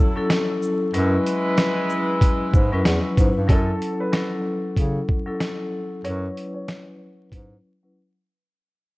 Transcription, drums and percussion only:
0.30 snare loud
0.30 closed hi-hat medium
0.30 tambourine medium
0.62 shaker medium
0.94 closed hi-hat medium
1.26 closed hi-hat medium
1.26 shaker medium
1.57 snare loud
1.57 closed hi-hat medium
1.57 tambourine medium
1.90 shaker medium
2.21 kick medium
2.21 closed hi-hat loud
2.53 kick loud
2.53 shaker medium
2.85 snare loud
2.85 closed hi-hat medium
2.85 tambourine medium
3.17 kick medium
3.17 closed hi-hat medium
3.17 shaker medium
3.49 kick loud
3.49 closed hi-hat medium
3.82 closed hi-hat medium
4.13 snare loud
4.13 closed hi-hat medium
4.77 kick medium
4.77 closed hi-hat medium
5.09 kick loud
5.41 snare loud
5.41 closed hi-hat medium
6.05 closed hi-hat medium
6.37 closed hi-hat medium
6.68 snare loud
6.68 closed hi-hat medium
7.32 kick medium
7.32 closed hi-hat medium

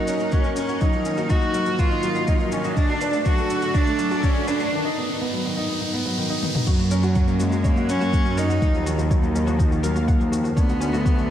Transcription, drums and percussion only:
0.07 shaker medium
0.20 shaker soft
0.32 kick loud
0.32 shaker soft
0.44 shaker soft
0.56 shaker medium
0.69 shaker soft
0.81 kick medium
0.81 shaker soft
0.93 shaker soft
1.05 shaker medium
1.17 shaker soft
1.30 kick medium
1.30 shaker soft
1.42 shaker soft
1.54 shaker medium
1.66 shaker soft
1.79 kick loud
1.79 shaker soft
1.91 shaker soft
2.03 shaker medium
2.15 shaker soft
2.27 kick loud
2.27 shaker soft
2.40 shaker soft
2.52 shaker medium
2.64 shaker soft
2.77 kick medium
2.77 shaker soft
2.89 shaker soft
3.01 shaker medium
3.13 shaker soft
3.25 kick medium
3.25 shaker soft
3.38 shaker soft
3.50 shaker medium
3.62 shaker soft
3.74 kick loud
3.74 shaker soft
3.87 shaker soft
3.99 shaker medium
4.11 shaker soft
4.23 kick loud
4.23 shaker soft
4.35 shaker soft
4.48 shaker medium
4.60 shaker soft
6.43 high tom medium
6.55 mid tom medium
6.67 kick medium
6.67 crash loud
6.67 shaker soft
6.79 shaker soft
6.91 shaker medium
7.03 shaker soft
7.15 kick loud
7.15 shaker soft
7.28 shaker soft
7.40 shaker medium
7.52 shaker soft
7.64 kick loud
7.64 shaker soft
7.77 shaker soft
7.89 shaker medium
8.01 shaker soft
8.13 kick loud
8.13 shaker soft
8.26 shaker soft
8.38 shaker medium
8.50 shaker soft
8.62 kick loud
8.62 shaker soft
8.74 shaker soft
8.87 shaker medium
8.99 shaker soft
9.11 kick loud
9.11 shaker soft
9.23 shaker soft
9.36 shaker medium
9.47 shaker soft
9.60 kick loud
9.60 shaker soft
9.72 shaker soft
9.84 shaker medium
9.96 shaker soft
10.08 kick loud
10.08 shaker soft
10.21 shaker soft
10.33 shaker medium
10.45 shaker soft
10.57 kick loud
10.57 shaker soft
10.69 shaker soft
10.81 shaker medium
10.94 shaker soft
11.06 kick loud
11.06 shaker soft
11.18 shaker soft

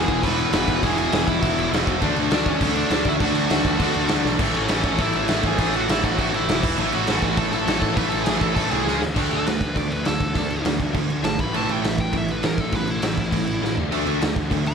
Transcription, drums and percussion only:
0.08 kick medium
0.08 crash medium
0.23 kick loud
0.23 crash loud
0.39 crash medium
0.53 snare loud
0.53 crash medium
0.68 kick medium
0.68 crash medium
0.83 kick loud
0.83 crash medium
0.98 crash medium
1.12 snare loud
1.12 crash medium
1.28 kick medium
1.28 crash medium
1.43 kick loud
1.43 crash medium
1.59 crash medium
1.73 snare loud
1.73 crash medium
1.87 kick medium
1.87 crash medium
2.02 kick loud
2.02 crash medium
2.16 crash medium
2.31 snare loud
2.31 crash medium
2.46 kick medium
2.46 crash medium
2.61 kick loud
2.61 crash medium
2.76 crash medium
2.90 snare loud
2.90 crash medium
3.05 kick medium
3.05 crash medium
3.20 kick loud
3.20 crash medium
3.35 crash medium
3.50 snare loud
3.50 crash medium
3.65 kick medium
3.65 crash medium
3.80 kick loud
3.80 crash loud
3.94 crash medium
4.09 snare loud
4.09 crash medium
4.25 snare medium
4.39 kick loud
4.39 crash loud
4.39 crash medium
4.54 crash medium
4.68 snare loud
4.68 crash medium
4.83 kick medium
4.83 crash medium
4.98 kick loud
4.98 crash medium
5.13 crash medium
5.28 snare loud
5.28 crash medium
5.43 kick medium
5.43 crash medium
5.58 kick loud
5.58 crash loud
5.74 crash medium
5.89 snare loud
5.89 crash medium
6.04 kick medium
6.04 crash medium
6.19 kick loud
6.19 crash medium
6.34 crash medium
6.49 snare loud
6.49 crash medium
6.63 kick loud
6.63 crash loud
6.78 crash medium
6.92 crash medium
7.07 snare loud
7.07 crash medium
7.22 kick medium
7.22 crash medium
7.37 kick loud
7.37 crash medium
7.53 crash medium
7.67 snare loud
7.67 crash medium
7.82 kick medium
7.82 crash medium
7.97 kick loud
7.97 crash medium
8.12 crash medium
8.26 snare loud
8.26 crash loud
8.41 kick medium
8.41 crash medium
8.56 kick loud
8.56 crash medium
8.71 crash medium
8.87 snare medium
9.02 snare loud
9.16 kick loud
9.16 crash loud
9.16 crash medium
9.31 crash medium
9.47 snare loud
9.47 crash medium
9.61 kick medium
9.61 crash medium
9.76 kick loud
9.76 crash medium
9.92 crash medium
10.05 snare loud
10.05 crash medium
10.20 kick medium
10.20 crash medium
10.35 kick loud
10.35 crash medium
10.50 crash medium
10.65 snare loud
10.65 crash medium
10.80 kick medium
10.80 crash medium
10.95 kick loud
10.95 crash medium
11.10 crash medium
11.24 snare loud
11.24 crash medium
11.39 kick loud
11.39 crash medium
11.54 crash medium
11.69 crash medium
11.84 snare loud
11.84 crash medium
11.98 kick medium
11.98 crash medium
12.13 kick loud
12.13 crash medium
12.28 crash medium
12.43 snare loud
12.43 crash medium
12.58 kick medium
12.58 crash medium
12.72 kick loud
12.72 crash medium
12.87 crash medium
13.02 snare loud
13.02 crash medium
13.17 kick medium
13.17 crash medium
13.32 kick loud
13.32 crash medium
13.47 crash medium
13.64 snare medium
13.77 floor tom medium
13.92 crash medium
14.07 crash medium
14.22 snare loud
14.22 crash medium
14.36 kick medium
14.36 crash medium
14.51 kick loud
14.51 crash medium
14.66 crash medium

